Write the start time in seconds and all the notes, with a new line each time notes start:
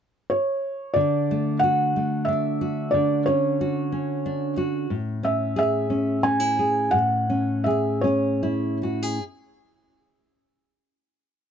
0.30 C#5
0.94 D3 D5
1.31 A3
1.59 F#5
1.63 F#4
1.96 A3
2.25 D4 E5
2.61 F#4
2.91 D3 D5
3.26 C#4 C#5
3.61 F#4
3.92 C#4
4.26 D4
4.57 F#4
4.90 A2
5.23 C#4 E5
5.56 G#4 E5
5.90 C#4
6.23 C#4 G#5
6.40 E4
6.59 G#4
6.91 A2 F#5
7.30 C#4
7.64 G#4 E5
8.01 C#4 C#5
8.43 E4
8.83 F#4
9.03 G#4